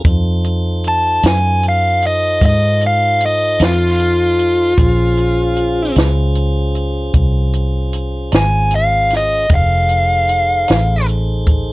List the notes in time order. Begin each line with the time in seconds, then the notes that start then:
0.05 F2 D#4 F4 A4 C5, kick, closed hi-hat
0.44 closed hi-hat
0.84 A5, closed hi-hat
1.23 F#2, snare, closed hi-hat
1.28 G#5
1.63 closed hi-hat
1.69 F5
2.02 closed hi-hat
2.07 D#5
2.41 G#2, kick, closed hi-hat
2.46 D#5
2.81 closed hi-hat
2.87 F5
3.21 closed hi-hat
3.26 D#5
3.60 F2, snare, closed hi-hat
3.65 F4
4.00 closed hi-hat
4.39 closed hi-hat
4.78 A#1 C#4 F4 G#4 C5, kick, closed hi-hat
5.17 closed hi-hat
5.56 closed hi-hat
5.96 C#2, snare, closed hi-hat
6.35 closed hi-hat
6.75 closed hi-hat
7.14 C2, kick, closed hi-hat
7.54 closed hi-hat
7.93 closed hi-hat
8.32 G#1 G#5, snare, closed hi-hat
8.71 closed hi-hat
8.76 F5
9.10 snare, closed hi-hat
9.17 D#5
9.49 F1 D#4 G#4 A4 C5, kick, closed hi-hat
9.55 F5
9.89 closed hi-hat
10.29 closed hi-hat
10.68 A1, snare, closed hi-hat
11.08 closed hi-hat
11.47 kick, closed hi-hat